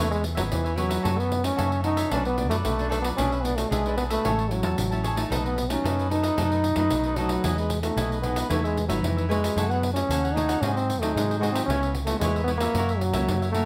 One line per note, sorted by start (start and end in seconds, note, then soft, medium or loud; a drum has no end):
0.00 0.39 E2 medium
0.00 0.49 E3 medium
0.00 0.10 A3 medium
0.00 0.34 B3 medium
0.00 0.34 C#4 medium
0.00 0.34 G#4 medium
0.00 0.10 B4 medium
0.00 0.11 C#5 medium
0.11 0.23 G#3 medium
0.11 0.23 B4 soft
0.11 0.23 C#5 soft
0.11 0.23 E5 soft
0.11 pandeiro soft
0.23 muted cavaquinho stroke soft
0.23 pandeiro medium
0.35 0.49 G#1 medium
0.35 0.43 F#3 medium
0.35 0.73 B3 soft
0.35 0.74 C#4 medium
0.35 0.74 G#4 medium
0.35 0.63 B4 medium
0.35 0.63 C#5 medium
0.35 0.62 E5 medium
0.35 pandeiro medium
0.52 0.97 E2 medium
0.52 1.02 E3 medium
0.52 0.79 E3 medium
0.52 pandeiro medium
0.64 0.76 B4 soft
0.64 0.77 C#5 soft
0.64 0.77 E5 soft
0.64 pandeiro soft
0.76 1.20 F#3 medium
0.76 0.93 B3 medium
0.76 0.94 C#4 medium
0.76 0.89 E4 medium
0.76 0.94 G#4 medium
0.76 0.90 B4 medium
0.76 0.89 C#5 medium
0.76 0.88 E5 medium
0.76 pandeiro medium
0.89 1.03 B4 soft
0.89 1.03 C#5 soft
0.89 1.02 E5 soft
0.89 pandeiro medium
1.03 1.55 F#2 medium
1.03 1.50 F#2 medium
1.03 1.30 E3 medium
1.03 1.30 A3 medium
1.03 1.30 C#4 medium
1.03 1.16 F#4 medium
1.03 1.16 A4 medium
1.03 1.17 C#5 medium
1.03 1.16 E5 medium
1.03 pandeiro medium
1.17 1.46 B3 medium
1.17 1.29 A4 soft
1.17 1.30 C#5 soft
1.17 1.30 E5 soft
1.17 pandeiro soft
1.30 muted cavaquinho stroke soft
1.30 pandeiro medium
1.44 1.80 E3 medium
1.44 1.80 A3 medium
1.44 1.83 C#4 loud
1.44 1.80 C#4 medium
1.44 pandeiro medium
1.56 2.04 F#2 medium
1.56 2.09 C#3 medium
1.56 1.69 F#4 medium
1.56 1.70 A4 medium
1.56 1.70 C#5 medium
1.56 1.69 E5 medium
1.56 pandeiro medium
1.70 1.83 A4 soft
1.70 1.84 C#5 soft
1.70 1.83 E5 medium
1.70 pandeiro soft
1.83 2.02 E3 medium
1.83 2.02 A3 soft
1.83 2.02 C#4 medium
1.83 2.12 D#4 medium
1.83 1.96 F#4 soft
1.83 1.97 A4 soft
1.83 1.96 C#5 soft
1.83 1.96 E5 soft
1.83 pandeiro medium
1.97 2.11 A4 soft
1.97 2.10 C#5 medium
1.97 2.10 E5 medium
1.97 pandeiro medium
2.11 2.50 B1 medium
2.11 2.62 B2 soft
2.11 2.28 F#3 medium
2.11 2.28 A3 medium
2.11 2.24 C#4 medium
2.11 2.24 D4 medium
2.11 2.28 D4 medium
2.11 2.24 A4 medium
2.11 2.24 B4 medium
2.11 2.23 D5 medium
2.11 pandeiro medium
2.25 2.49 B3 medium
2.25 2.36 A4 soft
2.25 2.37 B4 soft
2.25 2.37 D5 soft
2.25 pandeiro soft
2.37 2.73 F#3 medium
2.37 2.74 A3 medium
2.37 2.74 D4 medium
2.37 muted cavaquinho stroke soft
2.37 pandeiro soft
2.50 2.62 F#2 medium
2.50 2.56 A3 medium
2.50 2.78 A4 medium
2.50 2.77 B4 medium
2.50 2.76 D5 medium
2.50 pandeiro medium
2.64 3.10 B1 medium
2.64 3.16 F#2 medium
2.64 2.89 A3 medium
2.64 pandeiro medium
2.78 3.14 F#3 medium
2.78 3.14 A3 medium
2.78 3.14 D4 medium
2.78 2.89 A4 soft
2.78 2.90 B4 soft
2.78 2.90 D5 soft
2.78 pandeiro soft
2.90 3.01 A3 medium
2.90 3.03 D4 medium
2.90 3.03 A4 medium
2.90 3.03 B4 medium
2.90 3.03 D5 medium
2.90 pandeiro medium
3.02 3.08 B3 medium
3.02 3.17 B4 soft
3.02 3.17 D5 soft
3.02 pandeiro medium
3.06 3.17 A4 soft
3.17 3.63 B1 medium
3.17 3.69 B2 medium
3.17 3.34 E3 medium
3.17 3.34 G#3 medium
3.17 3.45 C#4 medium
3.17 3.30 D4 medium
3.17 3.34 D4 medium
3.17 3.31 G#4 medium
3.17 3.31 B4 medium
3.17 3.31 E5 medium
3.17 pandeiro medium
3.32 3.44 G#4 soft
3.32 3.44 B4 soft
3.32 3.44 E5 soft
3.32 pandeiro soft
3.43 3.69 E3 medium
3.43 3.69 G#3 medium
3.43 3.58 B3 medium
3.43 3.70 D4 medium
3.43 muted cavaquinho stroke soft
3.43 pandeiro medium
3.56 3.72 A3 medium
3.56 pandeiro medium
3.70 4.16 B1 medium
3.70 4.22 B2 medium
3.70 3.96 G#3 medium
3.70 3.83 D4 medium
3.70 3.84 G#4 medium
3.70 3.84 B4 medium
3.70 3.84 E5 medium
3.70 pandeiro medium
3.85 4.21 E3 medium
3.85 4.21 G#3 medium
3.85 4.21 D4 medium
3.85 3.97 G#4 soft
3.85 3.98 B4 soft
3.85 3.97 E5 soft
3.85 pandeiro soft
3.97 4.03 B3 medium
3.97 4.10 D4 soft
3.97 4.10 G#4 soft
3.97 4.10 B4 soft
3.97 4.09 E5 soft
3.97 pandeiro medium
4.10 4.52 A3 medium
4.10 4.24 G#4 medium
4.10 4.23 B4 medium
4.10 4.23 E5 medium
4.10 pandeiro medium
4.25 4.64 A1 medium
4.25 4.76 A2 medium
4.25 4.41 G#3 soft
4.25 4.41 C#4 medium
4.25 4.41 E4 medium
4.25 4.37 G#4 medium
4.25 4.37 C#5 medium
4.25 4.38 E5 medium
4.25 4.37 A5 medium
4.25 pandeiro medium
4.39 4.51 C#5 soft
4.39 4.51 E5 soft
4.39 4.50 A5 soft
4.39 pandeiro soft
4.50 5.04 F#3 medium
4.50 4.87 G#3 medium
4.50 4.87 C#4 medium
4.50 4.87 E4 medium
4.50 muted cavaquinho stroke soft
4.50 pandeiro soft
4.63 4.75 E2 medium
4.63 4.91 C#5 medium
4.63 4.90 E5 medium
4.63 4.90 A5 medium
4.63 pandeiro medium
4.78 5.23 A1 medium
4.78 5.29 E3 medium
4.78 pandeiro medium
4.91 5.14 G#3 medium
4.91 5.14 C#4 medium
4.91 5.14 E4 medium
4.91 5.03 C#5 soft
4.91 5.04 E5 soft
4.91 5.03 A5 medium
4.91 pandeiro soft
5.04 5.16 G#4 medium
5.04 5.17 C#5 medium
5.04 5.16 E5 medium
5.04 5.15 A5 medium
5.04 pandeiro medium
5.16 5.53 F#3 medium
5.16 5.53 A3 medium
5.16 5.53 D#4 medium
5.16 5.30 C#5 soft
5.16 5.30 E5 soft
5.16 5.29 A5 soft
5.16 pandeiro medium
5.30 5.76 B1 medium
5.30 5.82 B2 medium
5.30 5.43 D#4 medium
5.30 5.43 A4 medium
5.30 5.43 B4 medium
5.30 5.44 D#5 medium
5.30 pandeiro medium
5.45 5.72 B3 medium
5.45 5.57 A4 soft
5.45 5.57 B4 soft
5.45 5.57 D#5 soft
5.45 pandeiro soft
5.58 muted cavaquinho stroke soft
5.58 pandeiro medium
5.70 6.06 F#3 medium
5.70 6.06 A3 medium
5.70 6.11 C#4 medium
5.70 6.07 D#4 medium
5.70 pandeiro medium
5.84 6.35 F#2 medium
5.84 6.29 F#2 medium
5.84 5.96 D#4 medium
5.84 5.96 A4 medium
5.84 5.97 B4 medium
5.84 5.97 D#5 medium
5.84 pandeiro medium
5.98 6.10 A4 soft
5.98 6.11 B4 soft
5.98 6.10 D#5 soft
5.98 pandeiro soft
6.10 6.33 F#3 soft
6.10 6.33 A3 soft
6.10 6.23 D#4 soft
6.10 6.33 D#4 medium
6.10 7.18 D#4 medium
6.10 6.23 A4 soft
6.10 6.23 B4 soft
6.10 6.22 D#5 soft
6.10 pandeiro medium
6.23 6.37 A4 medium
6.23 6.36 B4 medium
6.23 6.36 D#5 medium
6.23 pandeiro medium
6.37 6.71 F#2 medium
6.37 6.88 B2 medium
6.37 6.73 F#3 medium
6.37 6.74 A3 medium
6.37 6.49 D#4 medium
6.37 6.74 D#4 medium
6.37 6.50 A4 medium
6.37 6.50 B4 medium
6.37 6.50 D#5 medium
6.37 pandeiro medium
6.51 6.63 A4 soft
6.51 6.63 B4 soft
6.51 6.63 D#5 soft
6.51 pandeiro soft
6.63 muted cavaquinho stroke soft
6.63 pandeiro medium
6.75 6.88 F#2 medium
6.75 7.12 F#3 medium
6.75 7.13 A3 medium
6.75 7.13 D#4 medium
6.75 7.03 A4 soft
6.75 7.03 B4 medium
6.75 7.02 D#5 medium
6.75 pandeiro medium
6.90 7.36 B1 medium
6.90 7.41 F#2 medium
6.90 pandeiro medium
7.04 7.16 A4 soft
7.04 7.17 B4 soft
7.04 7.16 D#5 soft
7.04 pandeiro soft
7.16 7.58 F#3 medium
7.16 7.40 F#3 medium
7.16 7.40 A3 medium
7.16 7.29 D#4 medium
7.16 7.40 D#4 medium
7.16 7.30 A4 medium
7.16 7.29 B4 medium
7.16 7.27 D#5 medium
7.16 pandeiro medium
7.29 7.43 A4 soft
7.29 7.42 B4 soft
7.29 7.42 D#5 soft
7.29 pandeiro medium
7.44 7.89 E2 medium
7.44 7.94 E3 medium
7.44 7.69 G#3 medium
7.44 7.69 B3 medium
7.44 7.69 D#4 medium
7.44 7.56 E4 medium
7.44 7.56 G#4 medium
7.44 7.57 B4 medium
7.44 7.57 D#5 medium
7.44 pandeiro medium
7.57 7.81 G#3 medium
7.57 7.70 G#4 soft
7.57 7.70 B4 soft
7.57 7.70 D#5 soft
7.57 pandeiro soft
7.70 muted cavaquinho stroke soft
7.70 pandeiro medium
7.82 8.20 A3 medium
7.82 8.19 B3 medium
7.82 8.19 D#4 medium
7.82 pandeiro medium
7.96 8.42 B1 medium
7.96 8.48 B2 medium
7.96 8.09 E4 medium
7.96 8.10 G#4 medium
7.96 8.10 B4 medium
7.96 8.10 D#5 medium
7.96 pandeiro medium
8.12 8.24 G#4 soft
8.12 8.24 B4 soft
8.12 8.23 D#5 soft
8.12 pandeiro soft
8.22 8.46 G#3 soft
8.22 8.51 B3 medium
8.22 8.46 B3 soft
8.22 8.46 D#4 medium
8.22 8.36 E4 soft
8.22 8.36 G#4 soft
8.22 8.36 B4 soft
8.22 pandeiro medium
8.26 8.35 D#5 medium
8.36 8.50 G#4 soft
8.36 8.49 B4 medium
8.36 8.48 D#5 medium
8.36 pandeiro medium
8.49 8.90 E2 medium
8.49 9.01 E3 medium
8.49 8.75 G#3 soft
8.49 8.63 A3 medium
8.49 8.76 B3 medium
8.49 8.76 D#4 medium
8.49 8.62 E4 medium
8.49 8.63 B4 medium
8.49 8.63 C#5 medium
8.49 8.63 E5 medium
8.49 pandeiro medium
8.63 8.87 G#3 medium
8.63 8.76 B4 soft
8.63 8.76 C#5 soft
8.63 8.76 E5 soft
8.63 pandeiro soft
8.76 muted cavaquinho stroke soft
8.76 pandeiro medium
8.88 9.00 G#1 medium
8.88 9.05 F#3 medium
8.88 9.25 G#3 medium
8.88 9.25 B3 medium
8.88 9.25 D#4 medium
8.88 9.16 B4 medium
8.88 9.16 C#5 medium
8.88 9.15 E5 medium
8.88 pandeiro medium
9.02 9.48 F2 medium
9.02 9.28 E3 medium
9.02 9.54 E3 medium
9.02 pandeiro medium
9.17 9.29 B4 soft
9.17 9.30 C#5 soft
9.17 9.29 E5 soft
9.17 pandeiro soft
9.29 9.72 G#3 medium
9.29 9.45 G#3 medium
9.29 9.45 B3 medium
9.29 9.46 D#4 medium
9.29 9.41 E4 medium
9.29 9.42 B4 medium
9.29 9.42 C#5 medium
9.29 9.41 E5 medium
9.29 pandeiro medium
9.42 9.56 B4 soft
9.42 9.56 C#5 soft
9.42 9.55 E5 soft
9.42 pandeiro medium
9.56 10.01 F#2 medium
9.56 10.07 F#3 medium
9.56 9.81 A3 medium
9.56 9.69 E4 medium
9.56 9.81 E4 medium
9.56 9.82 G#4 medium
9.56 9.69 A4 medium
9.56 9.69 C#5 medium
9.56 9.69 F#5 medium
9.56 pandeiro medium
9.70 9.93 B3 medium
9.70 9.83 A4 soft
9.70 9.83 C#5 soft
9.70 9.82 F#5 soft
9.70 pandeiro soft
9.83 muted cavaquinho stroke soft
9.83 pandeiro medium
9.94 10.31 A3 medium
9.94 10.35 C#4 medium
9.94 10.31 E4 medium
9.94 10.31 G#4 medium
9.94 pandeiro medium
10.09 10.54 D#2 medium
10.09 10.60 C#3 medium
10.09 10.22 E4 medium
10.09 10.22 A4 medium
10.09 10.23 C#5 medium
10.09 10.23 F#5 medium
10.09 pandeiro medium
10.24 10.35 A4 soft
10.24 10.35 C#5 soft
10.24 10.35 F#5 soft
10.24 pandeiro soft
10.34 10.58 A3 medium
10.34 10.63 D#4 medium
10.34 10.48 E4 soft
10.34 10.58 E4 medium
10.34 10.58 G#4 medium
10.34 10.48 A4 soft
10.34 10.48 C#5 soft
10.34 10.47 F#5 soft
10.34 pandeiro medium
10.48 10.62 A4 medium
10.48 10.62 C#5 medium
10.48 10.61 F#5 medium
10.48 pandeiro medium
10.61 11.01 G#2 loud
10.61 11.13 G#2 medium
10.61 10.87 F#3 medium
10.61 10.88 C4 soft
10.61 10.74 C#4 medium
10.61 10.88 D#4 medium
10.61 10.74 F#4 medium
10.61 10.75 G#4 medium
10.61 10.75 C5 medium
10.61 10.75 D#5 medium
10.61 pandeiro medium
10.74 11.01 C4 medium
10.74 10.89 C5 soft
10.74 10.88 D#5 medium
10.74 pandeiro soft
10.79 10.88 G#4 soft
10.89 muted cavaquinho stroke soft
10.89 pandeiro medium
11.00 11.13 D#2 medium
11.00 11.37 F#3 medium
11.00 11.16 A3 medium
11.00 11.38 C4 medium
11.00 11.38 D#4 medium
11.00 11.28 C5 medium
11.00 11.28 D#5 medium
11.00 pandeiro medium
11.04 11.29 G#4 soft
11.15 11.61 G#2 medium
11.15 11.66 D#3 medium
11.15 11.39 G#3 medium
11.15 pandeiro medium
11.30 11.41 G#4 soft
11.30 11.41 C5 soft
11.30 11.41 D#5 soft
11.30 pandeiro soft
11.39 11.64 F#3 medium
11.39 11.51 G#3 medium
11.39 11.64 C4 medium
11.39 11.65 D#4 medium
11.39 11.54 F#4 medium
11.39 11.54 G#4 medium
11.39 11.54 C5 medium
11.39 pandeiro medium
11.43 11.53 D#5 medium
11.52 11.65 C4 medium
11.52 11.68 C5 soft
11.52 11.67 D#5 soft
11.52 pandeiro medium
11.56 11.68 G#4 soft
11.66 12.13 C#2 medium
11.66 12.19 C#3 medium
11.66 11.94 G#3 medium
11.66 11.92 C#4 loud
11.66 11.81 E4 medium
11.70 11.94 B3 medium
11.70 11.94 E4 medium
11.70 11.81 B4 medium
11.70 11.82 C#5 medium
11.70 11.81 E5 medium
11.70 pandeiro medium
11.83 11.95 B4 soft
11.83 11.95 C#5 soft
11.83 11.94 E5 soft
11.83 pandeiro soft
11.95 muted cavaquinho stroke soft
11.95 pandeiro medium
12.05 12.44 G#3 medium
12.05 12.19 A3 medium
12.05 12.44 B3 medium
12.05 pandeiro medium
12.09 12.44 E4 medium
12.19 12.66 E2 medium
12.19 12.72 G#2 medium
12.19 12.43 G#3 medium
12.19 12.34 E4 medium
12.19 12.35 B4 medium
12.19 pandeiro medium
12.24 12.35 C#5 medium
12.24 12.34 E5 medium
12.36 12.48 B4 soft
12.36 12.48 C#5 soft
12.36 12.47 E5 soft
12.36 pandeiro soft
12.44 12.63 G#3 medium
12.44 12.51 B3 medium
12.48 12.64 B3 soft
12.48 12.64 E4 medium
12.48 12.61 E4 soft
12.48 12.61 B4 soft
12.48 12.62 C#5 soft
12.48 12.61 E5 soft
12.48 pandeiro medium
12.57 13.00 A#3 medium
12.57 pandeiro medium
12.62 12.75 B4 medium
12.62 12.75 C#5 medium
12.62 12.74 E5 medium
12.74 13.14 F#2 medium
12.74 13.25 F#2 medium
12.74 13.00 E3 medium
12.74 13.00 A#3 medium
12.74 13.00 C#4 medium
12.74 12.88 F#4 medium
12.74 12.88 A#4 medium
12.74 pandeiro medium
12.78 12.89 C#5 medium
12.78 12.89 E5 medium
12.89 13.02 A#4 soft
12.89 13.02 C#5 soft
12.89 13.01 E5 soft
12.89 pandeiro soft
12.99 13.51 F#3 loud
12.99 muted cavaquinho stroke soft
12.99 pandeiro medium
13.13 13.25 C#2 medium
13.13 13.50 E3 medium
13.13 13.50 A#3 medium
13.13 13.50 C#4 medium
13.13 13.41 A#4 medium
13.13 13.41 C#5 medium
13.13 13.40 E5 medium
13.13 pandeiro medium
13.28 13.65 F#2 medium
13.28 13.65 C#3 medium
13.28 pandeiro medium
13.42 13.54 A#4 soft
13.42 13.54 C#5 soft
13.42 13.54 E5 soft
13.42 pandeiro soft
13.52 13.65 E3 medium
13.52 13.65 A3 medium
13.52 13.65 A#3 medium
13.52 13.65 C#4 medium
13.52 13.65 F#4 medium
13.52 13.65 A#4 medium
13.52 13.65 C#5 medium
13.52 pandeiro medium
13.57 13.65 E5 medium